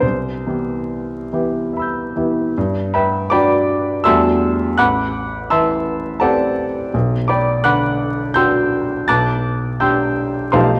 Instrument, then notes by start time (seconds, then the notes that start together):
grand piano
0.01 C2 C5
0.47 E3 B3 E4 G4
1.32 E3 B3 E4 G4
1.73 E5 B5
1.79 E6 G6
2.16 E3 B3 E4 G4
2.58 G2
2.93 B4 E5 G5 B5
3.30 D4 F#4 D5 G5 B5 D6
4.04 E2 G3 A3 D4 F#4 E5 A5 C6 E6
4.77 A1 F#5 B5 D6 F#6
5.50 E3 E5 A5 C6 E6
6.20 C4 G4 A4 D5 F#5 A5
6.94 B1
7.28 D5 G5 B5 D6
7.64 D3 F#5 B5 D6 F#6
8.34 D4 F#4 G5 C6 E6 G6
9.08 B1 A5 D6 F#6 A6
9.80 D4 G4 G5 C6 E6 G6
10.52 B1 F3 A3 D#4 G4 C5 F5 A5 C6